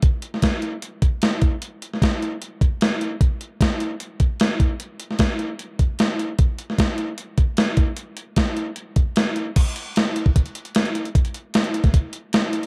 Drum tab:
CC |----------------|----------------|----------------|----------------|
HH |x-x-x-x-x-x-x-x-|x-x-x-x-x-x-x-x-|x-x-x-x-x-x-x-x-|x-x-x-x-x-x-x-x-|
SD |---oo-------o---|---oo-------o---|----o-------o---|---oo-------o---|
BD |o---o-----o---o-|----o-----o-----|o---o-----o---o-|----o-----o-----|

CC |----------------|----------------|x---------------|----------------|
HH |x-x-x-x-x-x-x-x-|x-x-x-x-x-x-x-x-|x-x-x-x-xxxxxxxx|xxx-xxxxx-x-x-xx|
SD |---oo-------o---|----o-------o---|----o-------o---|----o--o----o---|
BD |o---o-----o---o-|----o-----o-----|o------oo-------|o------oo-------|